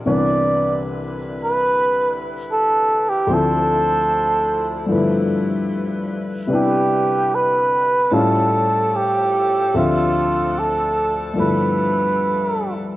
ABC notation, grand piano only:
X:1
M:4/4
L:1/8
Q:"Swing" 1/4=74
K:C
V:1 name="Grand piano" clef=bass
[C,,C,E,B,D]8 | [D,,D,F,CE]4 [G,,D,F,A,B,E]4 | [C,G,B,DE]4 [A,,G,^CEF]4 | [D,,D,F,Ce]4 [G,,D,F,A,B,E]4 |]